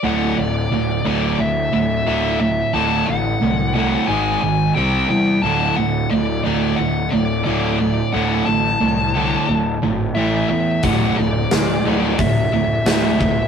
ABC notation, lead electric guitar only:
X:1
M:4/4
L:1/8
Q:1/4=89
K:Dmix
V:1 name="Lead electric guitar"
f d2 d e e e e | a f2 f ^g g =g g | a f d d f d d d | f a4- a e e |
f d2 d e e e e |]